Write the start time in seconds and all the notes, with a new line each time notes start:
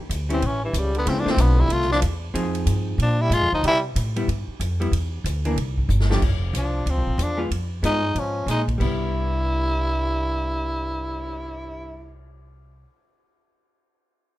0.09 D2, hi-hat pedal, ride
0.29 E3 G3 C#4 E4, ride
0.33 C4
0.42 A1 E3 C#4, ride
0.63 G2 E3
0.73 C#2 C#3, hi-hat pedal, ride
0.78 G3
0.95 D3 B3, ride
1.06 D2 C#3 F3 G#3 B3 C4 E4, ride
1.18 F3 D4
1.25 D3 A3 C4 F4, muted upright bass stroke, snare
1.29 E3 C4
1.37 B1 D3 B3, hi-hat pedal, ride
1.58 G3 E4
1.69 C2 A3 F4, ride
1.81 snare
1.91 F3 D4, snare
2.02 E2, hi-hat pedal, ride
2.34 F2 F3 C4 D#4 G#4, ride
2.55 ride
2.66 G2, hi-hat pedal, ride
2.98 A#2 F3, ride
3.02 D4
3.20 G3 E4
3.30 G#2 G#3 F4, hi-hat pedal, ride
3.42 F2
3.52 D2 F3 D#4
3.63 C3 G3, ride
3.67 E4
3.96 A2, hi-hat pedal, ride
4.16 G3 B3 E4, ride
4.28 G2, ride
4.48 muted upright bass stroke
4.60 F2, hi-hat pedal, ride
4.80 G3 B3 E4, ride
4.92 E2, ride
5.24 D2, hi-hat pedal, ride
5.45 E3 A#3 D4, ride
5.56 C2, ride
5.78 kick
5.89 G1, hi-hat pedal
6.00 snare
6.10 F3 A3 D4 G4, snare
6.22 F1, kick, crash
6.53 C2 F3 D4, hi-hat pedal, ride
6.86 D2 F3, ride
6.90 C4
6.97 C2
7.07 A1
7.18 E2 F3, hi-hat pedal, ride
7.23 D4
7.37 G#3 B3 F4
7.51 F2, ride
7.83 G2 G#3 B3 D#4 F4, hi-hat pedal, ride
8.15 G#2 F3 C#4, ride
8.46 A#2 G#3, snare, hi-hat pedal, ride
8.51 D#4
8.68 kick, ride
8.78 C2 G2 G3 B3 E4, kick, crash
8.82 E4
9.01 cymbal swell